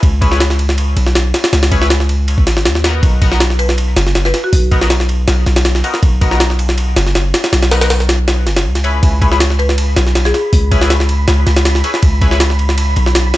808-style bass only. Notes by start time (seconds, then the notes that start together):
0.03 C#2
0.97 B1
1.53 C#2
2.47 G#1
2.65 D#2
3.03 B1
3.97 F#1
4.53 B1
5.28 B1
5.47 B1
6.03 B1
6.97 F#1
7.53 B1
8.46 F#1
8.65 C#2
9.03 C#2
9.97 B1
10.53 C#2
11.28 C#2
11.47 C#2
12.03 C#2
12.97 B1